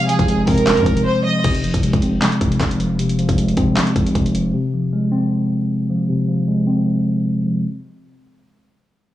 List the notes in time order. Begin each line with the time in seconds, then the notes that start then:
Already playing: C3 F3 G#3 C4
0.09 F3 G#4, closed hi-hat
0.19 F1, kick, closed hi-hat
0.28 G#3, closed hi-hat
0.47 F1 C4 A#4, kick, open hi-hat
0.58 closed hi-hat
0.67 snare, clap, closed hi-hat
0.77 G#2, closed hi-hat
0.86 F1, kick, closed hi-hat
0.97 closed hi-hat
1.06 C5
1.25 F3 D#5
1.44 F1 C3, kick, closed hi-hat, crash
1.55 closed hi-hat
1.64 F3, closed hi-hat
1.74 F1, kick, closed hi-hat
1.83 G#3, closed hi-hat
1.93 F1, kick, closed hi-hat
2.02 C4, closed hi-hat
2.22 snare, clap, closed hi-hat
2.32 closed hi-hat
2.41 F1, kick, closed hi-hat
2.52 closed hi-hat
2.60 F1, kick, snare, clap, closed hi-hat
2.71 closed hi-hat
2.80 F3, closed hi-hat
2.99 C3, closed hi-hat
3.09 closed hi-hat
3.19 F3, closed hi-hat
3.29 F1, kick, closed hi-hat
3.38 G#3, closed hi-hat
3.48 closed hi-hat
3.57 F1 C4, kick, closed hi-hat
3.77 snare, clap, closed hi-hat
3.87 closed hi-hat
3.96 F1, kick, closed hi-hat
4.07 closed hi-hat
4.15 F1, kick, closed hi-hat
4.26 closed hi-hat
4.35 F3, closed hi-hat
4.54 C3
4.74 F3
4.93 G#3
5.12 C4
5.90 F3
6.09 C3
6.28 F3
6.48 G#3
6.67 C4
7.45 F3